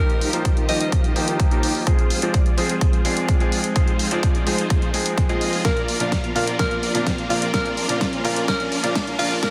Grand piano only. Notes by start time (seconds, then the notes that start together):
Already playing: F3 A#3 D#4
0.00 G4
0.33 F3 A#3 D#4 C5
0.68 F3 A#3 D#4 G4
1.15 F3 A#3 D#4 G4
1.51 F3 A#3 D#4 G4
1.86 F3 G#3 C4 G#4
2.21 F3 G#3 C4 C5
2.57 F3 G#3 C4 G#4
3.04 F3 G#3 C4 G#4
3.40 F3 G#3 C4 G#4
3.75 F3 G#3 C4 G#4
4.11 F3 G#3 C4 C5
4.46 F3 G#3 C4 G#4
4.93 F3 G#3 C4 G#4
5.29 F3 G#3 C4 G#4
5.64 A#2 F3 A#3 D4 A#4
6.00 A#2 F3 A#3 D4 D5
6.35 A#2 F3 A#3 D4 A#4
6.59 A#2 F3 A#3 D4 A#4
6.94 A#2 F3 A#3 D4 D5
7.30 A#2 F3 A#3 D4 A#4
7.53 A#2 F3 A#3 D4 A#4
7.88 A#2 F3 A#3 D4 D5
8.24 A#2 F3 A#3 D4 A#4
8.47 A#2 F3 A#3 D4 A#4
8.83 A#2 F3 A#3 D4 D5
9.19 A#2 F3 A#3 D4 A#4
9.42 A#2 F3 A#3 D4 A#4